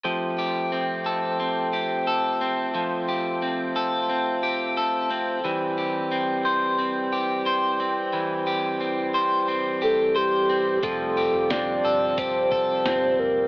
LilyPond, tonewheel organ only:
<<
  \new Staff \with { instrumentName = "Tonewheel organ" } { \time 4/4 \key f \major \tempo 4 = 89 << { <c' c''>1~ | <c' c''>1~ | <c' c''>1~ | <c' c''>1 |
<c' g'>1 | } \\ { g'1 | f'1 | g'1~ | g'1 |
f'1 | } >> }
  \new Staff \with { instrumentName = "Tonewheel organ" } { \clef bass \time 4/4 \key f \major <f a>1~ | <f a>1 | <e g>1~ | <e g>1 |
<c g>1 | }
>>